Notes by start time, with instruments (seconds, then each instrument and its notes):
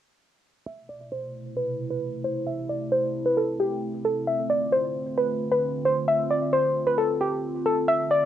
0.66 analog synth pad B2 C3 A3 E4, synth pluck E5
0.89 synth pluck D5
1.12 synth pluck C5
1.57 synth pluck B4
1.90 synth pluck B4
2.24 synth pluck C5
2.47 analog synth pad C4, synth pluck E5
2.70 synth pluck D5
2.92 synth pluck C5
3.26 synth pluck B4
3.37 synth pluck A4
3.60 synth pluck G4
4.05 synth pluck A4
4.27 analog synth pad D3 F4, synth pluck E5
4.50 synth pluck D5
4.72 synth pluck C5
5.18 synth pluck B4
5.51 synth pluck B4
5.85 synth pluck C5
6.08 synth pluck E5
6.31 synth pluck D5
6.53 synth pluck C5
6.87 synth pluck B4
6.98 synth pluck A4
7.21 synth pluck G4
7.66 synth pluck A4
7.88 analog synth pad D3 A3, synth pluck E5
8.11 synth pluck D5